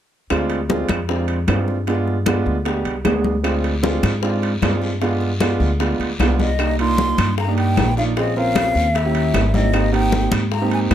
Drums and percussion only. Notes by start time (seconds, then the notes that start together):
0.30 high bongo, high conga, high timbale, claves
0.50 high bongo, high conga, high timbale
0.69 high bongo, high conga, low timbale
0.89 high bongo, high conga, high timbale, claves
1.09 high bongo, high conga
1.28 high conga, high timbale
1.48 high bongo, low bongo, high conga, high timbale, low timbale, claves
1.68 high bongo, high conga
1.87 high bongo, high conga, high timbale
2.07 high bongo, high conga
2.26 high bongo, high conga, high timbale, low timbale, claves
2.47 high bongo
2.65 high bongo, high conga, high timbale
2.85 high conga, high timbale
3.05 high bongo, low bongo, high conga, high timbale, low timbale, claves
3.24 high bongo, high conga
3.44 high bongo, high conga, high timbale, long guiro, claves
3.64 high bongo, high conga, high timbale
3.84 high bongo, high conga, low timbale, short guiro
4.03 high bongo, high conga, high timbale, short guiro, claves
4.23 high bongo, high conga, long guiro
4.42 high conga, high timbale
4.62 high bongo, low bongo, high conga, high timbale, low timbale, short guiro, claves
4.82 high bongo, high conga, short guiro
5.02 high bongo, high conga, high timbale, long guiro
5.21 high bongo, high conga
5.40 high bongo, high conga, high timbale, low timbale, short guiro, claves
5.60 high bongo, short guiro
5.80 high bongo, high conga, high timbale, long guiro
6.00 high conga, high timbale
6.20 high bongo, low bongo, high conga, high timbale, low timbale, short guiro, claves
6.39 high bongo, high conga, short guiro
6.59 high bongo, high conga, high timbale, long guiro, claves
6.79 high bongo, high conga, high timbale
6.98 high bongo, high conga, low timbale, short guiro
7.18 high bongo, high conga, high timbale, short guiro, claves
7.38 high bongo, high conga, long guiro
7.58 high conga, high timbale
7.77 high bongo, low bongo, high conga, high timbale, low timbale, short guiro, claves
7.97 high bongo, high conga, short guiro
8.16 high bongo, high conga, high timbale, long guiro
8.36 high bongo, high conga
8.56 high bongo, high conga, high timbale, low timbale, short guiro, claves
8.75 high bongo, short guiro
8.95 high bongo, high conga, high timbale, long guiro
9.14 high conga, high timbale
9.34 high bongo, low bongo, high conga, high timbale, low timbale, short guiro, claves
9.54 high bongo, high conga, short guiro
9.73 high bongo, high conga, high timbale, long guiro, claves
9.93 high bongo, high conga, high timbale
10.12 high bongo, high conga, low timbale, short guiro
10.32 high bongo, high conga, high timbale, short guiro, claves
10.52 high bongo, high conga, long guiro
10.71 high conga, high timbale
10.91 high bongo, low bongo, high conga, high timbale, low timbale, claves